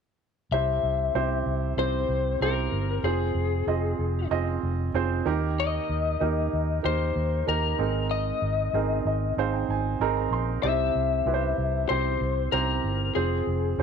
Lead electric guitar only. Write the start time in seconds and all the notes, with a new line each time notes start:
0.52 E5
1.79 C5
2.42 A#4
3.04 G#4
5.60 D#5
6.85 C5
7.49 A#4
8.11 D#5
10.63 E5
11.89 C5
12.52 A#4
13.15 G#4